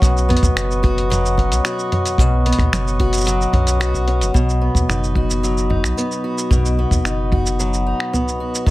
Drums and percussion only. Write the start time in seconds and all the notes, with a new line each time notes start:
0.02 kick, closed hi-hat, shaker
0.17 shaker
0.30 closed hi-hat, mid tom
0.37 closed hi-hat
0.43 kick, closed hi-hat, shaker
0.57 finger snap, closed hi-hat, shaker
0.71 shaker
0.84 kick, closed hi-hat
0.98 closed hi-hat
1.12 closed hi-hat, mid tom, shaker
1.26 shaker
1.38 kick, closed hi-hat
1.52 closed hi-hat, shaker
1.65 finger snap, closed hi-hat, shaker
1.79 shaker
1.92 closed hi-hat, mid tom
2.06 closed hi-hat, shaker
2.18 kick, closed hi-hat, shaker
2.46 closed hi-hat
2.53 closed hi-hat
2.59 finger snap, kick, closed hi-hat
2.73 finger snap, closed hi-hat, mid tom, shaker
2.88 shaker
3.00 kick, closed hi-hat
3.13 closed hi-hat, shaker
3.17 shaker
3.21 shaker
3.24 closed hi-hat, shaker
3.28 shaker
3.41 shaker
3.53 kick, closed hi-hat, mid tom
3.67 closed hi-hat, shaker
3.81 finger snap, closed hi-hat, shaker
3.94 kick, shaker
4.08 closed hi-hat
4.21 closed hi-hat, shaker
4.34 kick, shaker
4.49 shaker
4.75 kick, shaker
4.90 finger snap, mid tom, shaker
5.04 shaker
5.15 kick
5.30 shaker
5.44 shaker
5.58 shaker
5.70 kick, mid tom
5.84 finger snap, shaker
5.98 shaker
6.12 shaker
6.38 shaker
6.51 kick, mid tom, shaker
6.65 shaker
6.91 kick, shaker
7.05 finger snap, shaker
7.32 kick, mid tom
7.46 shaker
7.60 shaker
7.74 shaker
8.00 finger snap
8.13 mid tom, shaker
8.28 shaker
8.55 shaker
8.66 kick